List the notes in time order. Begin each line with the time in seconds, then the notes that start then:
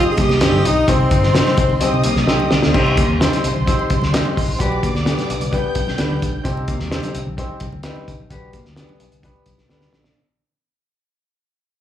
Already playing: C4 D#4 G4 C5 D#5 D#6
0.06 muted fingered electric bass stroke, muted conga
0.12 G#4
0.17 C2 A#3 G4, kick, closed hi-hat, high conga
0.29 snare, high conga
0.40 G1 C4 D#4 G4 C5, snare, closed hi-hat, muted conga
0.53 high conga
0.64 B1 D#4, closed hi-hat, low conga
0.87 C2 C3 C4 D#4 G4 C5 C6, kick, closed hi-hat, muted conga, low conga
1.01 muted conga
1.11 G1 D#4, kick, closed hi-hat
1.23 snare, high conga
1.33 C4 D#4 G4 C5, snare, closed hi-hat, muted conga
1.46 muted fingered electric bass stroke, snare, high conga
1.57 C2, kick, closed hi-hat
1.70 low conga
1.80 C4 D#4 G4 C5 D#5 D#6, closed hi-hat, muted conga, high conga
1.93 C3, muted conga
2.04 C2 A#3, closed hi-hat, high conga
2.16 C2, snare, high conga
2.27 B1 C4 D#4 G4 C5, snare, muted conga
2.40 muted conga, high conga
2.51 C2, snare, low conga
2.62 D2, snare
2.73 C2 C3 C4 D#4 G4 C5 C6, kick, crash, muted conga, low conga
2.86 muted conga
2.97 A#3, kick, closed hi-hat
3.09 D#2, high conga
3.20 C4 D#4 G4 C5, snare, closed hi-hat, muted conga
3.32 snare, closed hi-hat, high conga
3.44 C2, closed hi-hat
3.56 B1, low conga
3.66 C4 D#4 G4 C5, kick, closed hi-hat, muted conga, high conga
3.79 muted conga
3.90 C2, kick, closed hi-hat, high conga
4.02 D2, snare, high conga
4.12 C4 D#4 G4 D#5, snare, closed hi-hat, muted conga
4.25 muted conga, high conga
4.37 C2, kick, open hi-hat, low conga
4.48 A#1
4.59 B1 B2 B3 D4 G4 B4 D5 D6, kick, closed hi-hat, muted conga, low conga
4.72 muted conga
4.83 A#3, kick, closed hi-hat
4.94 D2, snare, high conga
5.05 B3 D4 G4 D5, snare, closed hi-hat, muted conga
5.18 snare, closed hi-hat, high conga
5.29 B1, closed hi-hat
5.40 C2, closed hi-hat, low conga
5.51 B3 D4 G4 B4 G5 G6, kick, closed hi-hat, muted conga, high conga
5.64 muted conga
5.75 B1, kick, closed hi-hat, high conga
5.87 C2, snare, high conga
5.98 D2 B3 D4 G4 B4, snare, closed hi-hat, muted conga
6.10 high conga
6.22 B1, kick, closed hi-hat, low conga
6.44 C2 C3 C4 D#4 G4 C5, kick, closed hi-hat, muted conga, low conga
6.57 muted conga
6.68 A#3, kick, closed hi-hat
6.80 D#2, snare, high conga
6.91 C4 D#4 G4 C5, snare, closed hi-hat, muted conga
7.03 closed hi-hat, muted conga, high conga
7.14 C2, closed hi-hat
7.26 B1, low conga
7.37 C4 D#4 G4 C5, kick, closed hi-hat, muted conga, high conga
7.60 C2, kick, closed hi-hat, high conga
7.72 D2, high conga
7.83 C4 D#4 G4 B4, snare, closed hi-hat
7.96 muted conga, high conga
8.08 C2, kick, closed hi-hat, low conga
8.19 A#1
8.30 B1 B2 B3 D4 G4 B4, kick, closed hi-hat, low conga
8.53 A#3, kick, closed hi-hat
8.65 D2, snare, high conga
8.76 B3 D4 G4 B4, snare, closed hi-hat
8.89 muted conga, high conga
9.00 B1, closed hi-hat
9.11 C2, closed hi-hat, low conga
9.23 B3 D4 G4 B4, kick, closed hi-hat, muted conga, high conga
9.36 muted conga
9.46 B1, kick, closed hi-hat, high conga
9.57 C2, snare, high conga
9.69 D2 B3 D4 G4 B4, snare, muted conga
9.81 snare, high conga
9.92 A#1, snare, low conga
10.04 snare